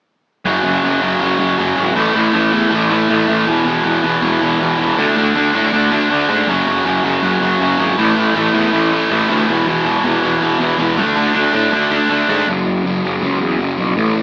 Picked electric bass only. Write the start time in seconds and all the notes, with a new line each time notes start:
0.45 F#1
0.64 F#1
0.83 F#1
1.02 F#1
1.21 F#1
1.39 F#1
1.58 F#1
1.77 G#1
1.96 A1
2.14 A1
2.34 A1
2.53 E2
2.72 A1
3.09 A1
3.28 A1
3.47 E1
3.66 E1
3.85 E1
4.04 E1
4.22 E1
4.41 E1
4.60 E1
4.79 E1
4.97 D2
5.17 D2
5.36 D2
5.54 A2
5.73 D2
6.10 D2
6.29 G#2
6.47 F#1
6.66 F#1
6.86 F#1
7.04 F#1
7.23 F#1
7.41 F#1
7.61 F#1
7.79 G#1
7.98 A1
8.17 A1
8.36 A1
8.54 E2
8.73 A1
9.11 A1
9.29 D2
9.48 E1
9.66 E1
9.85 E1
10.04 E1
10.22 E1
10.41 E1
10.61 E1
10.79 E1
10.97 D2
11.17 D2
11.35 D2
11.54 A2
11.72 D2
12.10 D2
12.28 G#2
12.47 F#1
12.66 F#1
12.84 F#1
13.04 F#1
13.22 C#2
13.40 E2
13.59 F#1
13.78 B1
13.96 A1
14.15 A1